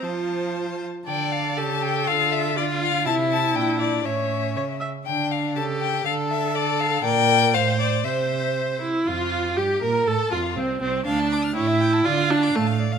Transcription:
<<
  \new Staff \with { instrumentName = "Violin" } { \time 2/4 \key f \major \tempo 4 = 121 a''4. r8 | \key d \minor g''8 f''8 a''8 g''8 | f''8 e''8 d''8 f''8 | a''8 a''8 g''8 d''8 |
e''4. r8 | g''8 f''8 a''8 g''8 | f''8 e''8 d''8 f''8 | \key f \major g''4 f''8 d''8 |
e''4. r8 | f'4 g'8 bes'8 | a'8 f'8 c'8 c'8 | a''4 g''4 |
f''2 | }
  \new Staff \with { instrumentName = "Violin" } { \time 2/4 \key f \major c''4. r8 | \key d \minor a'4 g'4 | f'4 f'4 | e'4 d'4 |
cis'4. r8 | d'4 g'4 | a'4 a'4 | \key f \major d''4 c''4 |
c''4. r8 | f'4 g'8 bes'8 | a'8 f'8 c'8 c'8 | f''16 a''16 d'''16 f'''16 cis''16 e''16 g''16 a''16 |
d''16 f''16 a''16 d'''16 a''16 f''16 d''16 f''16 | }
  \new Staff \with { instrumentName = "Viola" } { \time 2/4 \key f \major f4. r8 | \key d \minor d''4 a'4~ | a'4 f'4 | e'2 |
cis''4 cis''8 e''8 | r4 a'4 | a'2 | \key f \major bes'4 c''4 |
c''4. e'8 | f'4 g'8 bes'8 | a'8 f'8 c'8 c'8 | d'4 e'4 |
f'8 d'8 a8 r8 | }
  \new Staff \with { instrumentName = "Cello" } { \clef bass \time 2/4 \key f \major f'4. r8 | \key d \minor d4 cis4 | d2 | c4 bes,4 |
a,4 cis8 r8 | d4 cis4 | d2 | \key f \major bes,4 a,4 |
c4. r8 | f,4 g,8 bes,8 | a,8 f,8 c,8 c,8 | d,4 a,4 |
d4 a,4 | }
>>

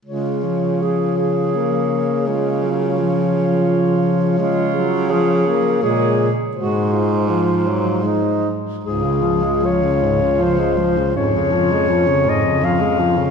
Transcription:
<<
  \new Staff \with { instrumentName = "Clarinet" } { \time 3/4 \key des \major \tempo 4 = 82 des''2. | des''2.~ | des''2 des''8 r8 | c''4 c''4 c''8 r8 |
aes'4 des''4 c''4 | des''4. ees''8 f''4 | }
  \new Staff \with { instrumentName = "Alto saxophone" } { \time 3/4 \key des \major f'4 aes'8 aes'4. | f'2. | f'4 aes'4 aes'8 r8 | ges'8 f'4. ees'8 r8 |
f'2. | des'2. | }
  \new Staff \with { instrumentName = "Tenor saxophone" } { \clef bass \time 3/4 \key des \major aes8 f4. bes4 | aes8 ges8 f2 | aes8 ges8 f8 bes8 aes8. r16 | aes4 f8 ges8 aes8 r8 |
aes,16 des16 f16 aes16 f16 des16 aes,16 des16 f16 aes16 f16 des16 | aes,16 des16 f16 aes16 f16 des16 aes,16 des16 f16 aes16 f16 des16 | }
  \new Staff \with { instrumentName = "Baritone saxophone" } { \clef bass \time 3/4 \key des \major des2.~ | des2. | des2 bes,8 r8 | aes,2~ aes,8 r8 |
des,2. | f,2. | }
>>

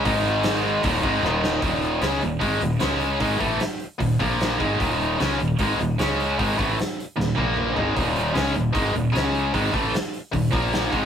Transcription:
<<
  \new Staff \with { instrumentName = "Distorted electric guitar" } { \clef bass \time 4/4 \key bes \dorian \tempo 4 = 152 <aes, ees aes>2 <ees, bes, ees>8 <aes, ees aes>8 <ees, bes, ees>4 | <ees, bes, ees>4 <des aes des'>8 <ees, bes,>8 <aes, ees aes>8 <ees, bes,>8 <des aes des'>4 | <aes, ees aes>8 <a, fes a>8 r4 <ees, bes,>8 <bes, f bes>4 <aes, ees aes>8 | <ees, bes, ees>4 <des aes des'>8 <ees, bes,>8 <aes, ees aes>8 <ees, bes,>8 <des aes des'>4 |
<aes, ees aes>8 <a, fes a>8 r4 <ees, bes,>8 <bes, f bes>4 <aes, ees aes>8 | <ees, bes, ees>4 <des aes des'>8 <ees, bes,>8 <aes, ees aes>8 <ees, bes,>8 <des aes des'>4 | <aes, ees aes>8 <a, fes a>8 r4 <ees, bes,>8 <bes, f bes>4 <aes, ees aes>8 | }
  \new Staff \with { instrumentName = "Distorted electric guitar" } { \clef bass \time 4/4 \key bes \dorian <aes, ees aes>2 <ees, bes, ees>8 <aes, ees aes>8 <ees, bes, ees>4 | <ees, bes, ees>4 <des aes des'>8 <ees, bes,>8 <aes, ees aes>8 <ees, bes,>8 <des aes des'>4 | <aes, ees aes>8 <a, fes a>8 r4 <ees, bes,>8 <bes, f bes>4 <aes, ees aes>8 | <ees, bes, ees>4 <des aes des'>8 <ees, bes,>8 <aes, ees aes>8 <ees, bes,>8 <des aes des'>4 |
<aes, ees aes>8 <a, fes a>8 r4 <ees, bes,>8 <bes, f bes>4 <aes, ees aes>8 | <ees, bes, ees>4 <des aes des'>8 <ees, bes,>8 <aes, ees aes>8 <ees, bes,>8 <des aes des'>4 | <aes, ees aes>8 <a, fes a>8 r4 <ees, bes,>8 <bes, f bes>4 <aes, ees aes>8 | }
  \new Staff \with { instrumentName = "Fretless electric bass" } { \clef bass \time 4/4 \key bes \dorian aes,,2 ees,,8 aes,,8 ees,,4 | ees,,4 des,8 ees,,8 aes,,8 ees,,8 des,4 | aes,,8 a,,8 r4 ees,,8 bes,,4 aes,,8 | ees,,4 des,8 ees,,8 aes,,8 ees,,8 des,4 |
aes,,8 a,,8 r4 ees,,8 bes,,4 aes,,8 | ees,,4 des,8 ees,,8 aes,,8 ees,,8 des,4 | aes,,8 a,,8 r4 ees,,8 bes,,4 aes,,8 | }
  \new DrumStaff \with { instrumentName = "Drums" } \drummode { \time 4/4 <hho bd>4 <hho sn>4 <hho bd>8 bd8 sn8 sn8 | <hho bd>8 hho8 <hho sn>8 hho8 <hho bd>8 hho8 <hho sn>8 hho8 | <hho bd>8 <hho bd>8 <hho sn>8 hho8 <hho bd>8 <hho bd>8 <hho sn>8 <hho bd>8 | <hho bd>8 hho8 <hho sn>8 hho8 <hho bd>8 hho8 <hho sn>8 hho8 |
<hho bd>8 <hho bd>8 <hho sn>8 hho8 sn8 tommh8 toml8 tomfh8 | <hho bd>8 hho8 <hho sn>8 hho8 <hho bd>8 hho8 <hho sn>8 hho8 | <hho bd>8 <hho bd>8 <hho sn>8 hho8 <hho bd>8 <hho bd>8 <hho sn>8 <hho bd>8 | }
>>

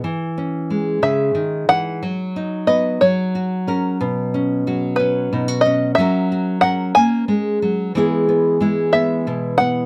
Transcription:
<<
  \new Staff \with { instrumentName = "Five-string banjo" } { \time 6/8 \key b \major \tempo 4. = 61 r4. e''4 fis''8~ | fis''4 dis''8 cis''4 r8 | r4. b'4 dis''8 | e''4 fis''8 gis''4 r8 |
r4. e''4 fis''8 | }
  \new Staff \with { instrumentName = "Nylon-string guitar" } { \time 6/8 \key b \major << { r8 cis'2~ cis'8 | r8 dis'8 b'8 r8 fis'8 ais'8 | r8 cis'8 fis'8 cis'8 dis'16 fis'16 cis'8 | <cis' fis' ais'>8 fis'8 ais'2 |
<gis b e' gis'>8 b8 e'8 b8 e'8 b8 | } \\ { e4 gis8 cis8 dis8 e8 | fis4 b8 fis4 cis'8 | b,4 fis4 b,4 | fis4 cis'8 ais8 gis8 fis8 |
e4 gis4 b,4 | } >> }
>>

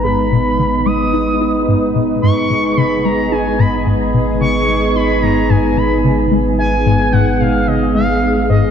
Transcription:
<<
  \new Staff \with { instrumentName = "Analog synth lead" } { \time 4/4 \key gis \minor \tempo 4 = 110 b''4. dis'''2 r8 | cis'''4 b''8 ais''8 gis''8 b''8 r4 | cis'''4 b''8 ais''8 gis''8 b''8 r4 | gis''4 fis''8 eis''8 dis''8 eis''4 dis''8 | }
  \new Staff \with { instrumentName = "Analog synth pad" } { \time 4/4 \key gis \minor << { b'1 | gis'1~ | gis'1~ | gis'1 | } \\ { <gis b dis'>1~ | <gis b dis'>1~ | <gis b dis'>1~ | <gis b dis'>1 | } >> }
  \new Staff \with { instrumentName = "Synth arpeggio sound" } { \clef bass \time 4/4 \key gis \minor gis,8 b,8 cis8 gis8 dis'8 dis'8 gis,8 b,8 | gis,8 b,8 cis8 gis8 dis'8 gis,8 gis,8 b,8 | cis8 gis8 dis'8 gis,8 gis,8 b,8 cis8 gis8 | dis'8 gis,8 gis,8 b,8 cis8 gis8 dis'8 gis,8 | }
  \new Staff \with { instrumentName = "Sub bass" } { \clef bass \time 4/4 \key gis \minor gis,,1 | gis,,1~ | gis,,1~ | gis,,1 | }
>>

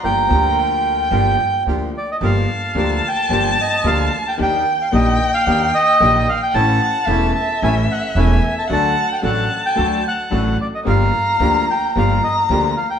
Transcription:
<<
  \new Staff \with { instrumentName = "Violin" } { \time 4/4 \key g \minor \tempo 4 = 111 bes''4 g''2~ g''8 r8 | a''1 | g''1 | fis''4 e''2. |
fis''4 a''2~ a''8 r8 | bes''2 bes''2 | }
  \new Staff \with { instrumentName = "Bandoneon" } { \time 4/4 \key g \minor g''2. r8 d''16 ees''16 | f''4. g''4 ees''8 f''8. g''16 | g''8. f''16 ees''8. f''8. ees''4 f''16 g''16 | a''4. a''8 aes''8 fis''8 aes''8. a''16 |
a''8. g''16 fis''8. g''8. fis''4 d''16 ees''16 | f''4. g''8 f''8 ees''8 r8 f''16 g''16 | }
  \new Staff \with { instrumentName = "Bandoneon" } { \time 4/4 \key g \minor <f' g' bes'>8 <f' g' bes'>4. <f' g' bes'>8 r8 <f' g' bes'>8 r8 | <f' g' bes'>8 r8 <f' g' bes'>8 r8 <f' g' bes'>8 r8 <f' g' bes'>8 r8 | <d' ees' g'>8 r8 <d' ees' g'>8 r8 <d' ees' g'>8 r8 <d' ees' g'>8 r8 | <cis' e' a'>8 r8 <cis' e' a'>8 r8 <cis' e' a'>8 r8 <cis' e' a'>8 r8 |
<d' fis' a'>8 r8 <d' fis' a'>8 r8 <d' fis' a'>8 r8 <d' fis' a'>8 r8 | <bes f' g'>8 r8 <bes f' g'>8 r8 <bes f' g'>8 r8 <bes f' g'>8 r8 | }
  \new Staff \with { instrumentName = "Grand piano" } { \time 4/4 \key g \minor <g,, g, f bes d' g'>8 <d, d f bes d' g'>4. <g,, g, f bes d' g'>8 r8 <d, d f bes d' g'>8 r8 | <g,, g, f bes d' g'>8 r8 <d, d f bes d' g'>8 r8 <g,, g, f bes d' g'>8 r8 <d, d f bes d' g'>8 r8 | <ees, ees bes d' g'>8 r8 <bes,, bes, ees bes d' g'>8 r8 <ees, ees bes d' g'>8 r8 <bes,, bes, ees bes d' g'>8 r8 | <a,, a, e a cis' a'>8 r8 <e,, e, e a cis' a'>8 r8 <a,, a, e a cis' a'>8 r8 <e,, e, e a cis' a'>8 r8 |
<d, d fis a d' a'>8 r8 <a,, a, fis a d' a'>8 r8 <d, d fis a d' a'>8 r8 <a,, a, fis a d' a'>8 r8 | <g,, g, f bes d' g'>8 r8 <d, d f bes d' g'>8 r8 <g,, g, f bes d' g'>8 r8 <d, d f bes d' g'>8 r8 | }
  \new Staff \with { instrumentName = "Upright bass" } { \clef bass \time 4/4 \key g \minor g,,8 d,4. g,,8 r8 d,8 r8 | g,,8 r8 d,8 r8 g,,8 r8 d,8 r8 | ees,8 r8 bes,,8 r8 ees,8 r8 bes,,8 r8 | a,,8 r8 e,,8 r8 a,,8 r8 e,,8 r8 |
d,8 r8 a,,8 r8 d,8 r8 a,,8 r8 | g,,8 r8 d,8 r8 g,,8 r8 d,8 r8 | }
>>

